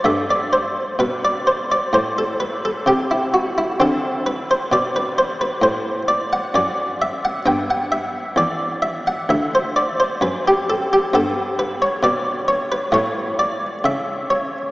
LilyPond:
<<
  \new Staff \with { instrumentName = "Harpsichord" } { \time 4/4 \key g \major \tempo 4 = 66 e''16 d''16 c''8 b'16 d''16 c''16 d''16 c''16 a'16 b'16 a'16 g'16 e'16 fis'16 e'16 | a'8 b'16 c''16 d''16 b'16 c''16 b'16 c''8 d''16 fis''16 d''8 e''16 fis''16 | g''16 fis''16 e''8 d''8 e''16 fis''16 e''16 c''16 d''16 c''16 b'16 g'16 a'16 g'16 | \key g \lydian a'8 b'16 cis''16 d''8 cis''16 b'16 cis''8 d''8 e''8 cis''8 | }
  \new Staff \with { instrumentName = "Harpsichord" } { \clef bass \time 4/4 \key g \major << { a1 | c'1 | b1 | \key g \lydian b2 a2 | } \\ { g,4 b,4 a,4 c4 | d4 b,4 a,4 fis,4 | g,4 e,4 d,4 fis,4 | g,4 b,4 a,4 cis4 | } >> }
>>